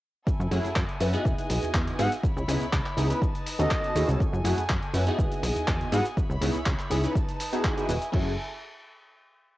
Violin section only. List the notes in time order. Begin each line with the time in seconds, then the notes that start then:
0.27 E4 A4 G#5
1.25 D#5
2.23 E4 C#5 B5
3.22 D#4 B4 A5
4.20 A4 G#5
5.18 D#5 G#5
6.17 E4 C#5 B5
7.15 D#4 B4 A5
7.64 E4 D#5 G#5
8.13 E4 A4 G#5